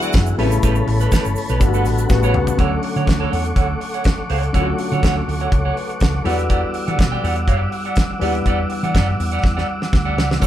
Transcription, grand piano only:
Already playing: D3 F#3 G#3 B3 E4
0.37 C3 G3 A3 B3 E4
0.43 C#3
1.60 D3 G3 A3 B3 F4
1.67 F#4
2.08 C#3 G3 A3 B3 F#4
2.57 D3 F#3 A3 C#4 F#4
4.53 D3 F#3 A3 C#4 F4
4.62 F#4
5.52 C#5
5.76 B4
6.01 A4
6.24 E3 F#3 B3 D4 F#4
6.31 G3
8.19 E3 G3 B3 D4 G4
10.40 D3 F#3 A3 C#4 F#4

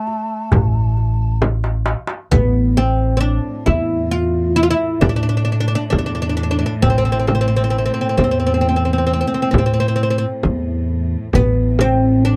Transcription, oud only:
Already playing: A4
2.31 B3
2.77 C4
3.17 C4 D4
3.66 E4
4.11 F4
4.56 E4
4.63 F4
4.71 E4
5.01 D4
5.09 D4
5.16 D4
5.23 D4
5.29 D4
5.37 D4
5.45 D4
5.52 D4
5.60 D4
5.68 D4
5.75 D4
5.90 D4
5.98 D4
6.06 D4
6.15 D4
6.22 D4
6.29 D4
6.37 D4
6.43 D4
6.51 D4
6.59 D4
6.66 D4
6.82 C4
6.90 C4
6.98 C4
7.05 C4
7.12 C4
7.19 C4
7.27 C4
7.35 C4
7.41 C4
7.48 C4
7.57 C4
7.64 C4
7.70 C4
7.78 C4
7.86 C4
7.94 C4
8.01 C4
8.09 C4
8.17 C4
8.24 C4
8.31 C4
8.40 C4
8.47 C4
8.54 C4
8.61 C4
8.69 C4
8.76 C4
8.85 C4
8.93 C4
8.98 C4
9.07 C4
9.13 C4
9.21 C4
9.27 C4
9.34 C4
9.42 C4
9.51 C4
9.58 C4
9.66 C4
9.74 C4
9.80 C4
9.88 C4
9.96 C4
10.03 C4
10.10 C4
10.18 C4
11.35 B3
11.81 C4
12.25 D4

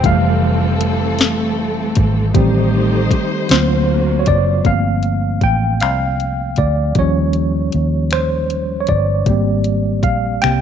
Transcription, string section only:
Already playing: E3 C4
0.03 A3 A4
2.34 A3 D#4 G4 C5
3.49 D3 A#3 F4 F#4

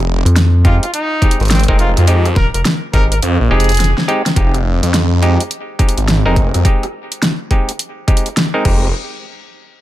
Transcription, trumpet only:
0.65 F4
0.82 F4
0.94 D#4
1.51 C4
1.69 C4
1.79 F4
1.98 F4
2.36 A#4
2.54 A#4
2.94 A#4
3.12 A#4
3.51 G#4

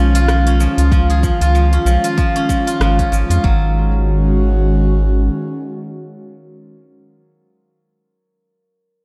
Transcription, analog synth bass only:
Already playing: B1
0.78 C#2
1.41 C#2
1.85 B1
2.80 G#1
3.12 G#1
3.30 F2
3.44 G#1

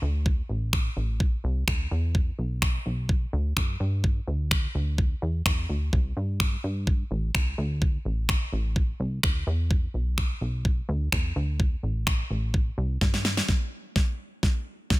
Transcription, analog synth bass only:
0.02 D2
0.49 A1
0.97 A1
1.44 C2
1.68 D2
1.91 E2
2.39 B1
2.86 B1
3.33 D2
3.57 F#2
3.80 G2
4.27 D2
4.75 D2
5.22 E2
5.46 E2
5.69 D2
5.93 C2
6.17 G2
6.64 G2
7.11 A1
7.35 C2
7.58 D2
8.05 A1
8.53 A1
9.00 C2
9.23 D2
9.47 E2
9.94 B1
10.41 B1
10.89 D2
11.12 E2
11.36 D2
11.83 A1
12.30 A1
12.78 C2
13.01 G2

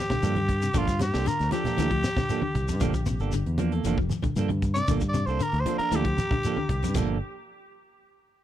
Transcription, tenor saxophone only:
0.00 G4
0.78 F4
1.02 G4
1.28 A#4
1.52 G4
4.74 D5
5.09 D5
5.26 C5
5.43 A#4
5.60 C5
5.78 A#4
5.96 G4

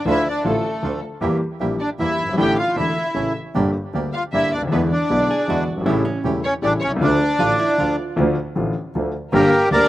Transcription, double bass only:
0.06 D2
0.45 A1
0.83 D2
1.22 E2
1.60 A#1
1.99 E2
2.19 G1
2.38 A1
2.77 E1
3.16 A1
3.56 G1
3.94 D2
4.33 G1
4.53 D2
4.72 E2
5.10 B1
5.49 E2
5.67 G1
5.87 A1
6.25 E1
6.63 A1
6.83 C2
7.01 D2
7.41 A1
7.80 D2
8.18 D2
8.57 A1
8.95 D2
9.33 G1
9.70 D2

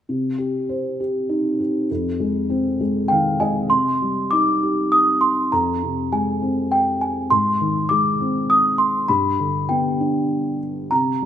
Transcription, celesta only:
3.08 G5
3.40 G#5
3.70 C6
4.31 D6
4.92 D#6
5.21 C6
5.52 A#5
6.12 G#5
6.72 G5
7.01 G#5
7.30 C6
7.89 D6
8.50 D#6
8.78 C6
9.08 B5
9.69 G5
10.91 A#5

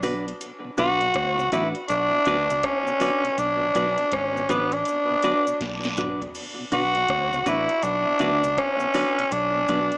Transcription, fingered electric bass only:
Already playing: B1
0.78 B1
1.15 D2
1.39 C#2
1.52 A1
1.90 B1
2.27 D2
2.50 C#2
3.38 B1
3.75 B1
4.13 G#1
4.49 A1
5.61 B1
6.72 B1
7.09 D2
7.32 C#2
7.46 A1
7.83 B1
8.21 D2
8.44 C#2
9.32 B1
9.69 B1

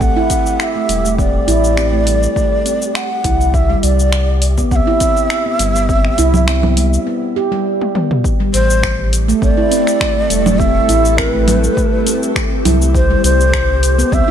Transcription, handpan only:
0.01 C4
0.17 E4
0.30 C4
0.75 A3
0.89 G3
1.05 A3
1.18 C4
1.48 E4
1.77 C4
1.93 A3
2.06 G3
2.36 A3
2.66 C4
3.24 E4
3.70 G3
4.58 B3
4.72 C4
4.87 E4
5.01 C4
5.46 B3
5.60 G3
5.75 B3
5.89 C4
6.18 E4
6.48 C4
6.64 B3
6.77 G3
7.07 B3
7.36 G4
7.52 G3
7.95 B3
8.40 G3
9.28 A3
9.42 C4
9.57 E4
9.71 C4
10.17 A3
10.30 G3
10.46 A3
10.60 C4
10.89 E4
11.18 C4
11.34 A3
11.47 G3
11.77 A3
12.06 C4
12.65 E4
13.10 G3
13.98 B3
14.12 C4

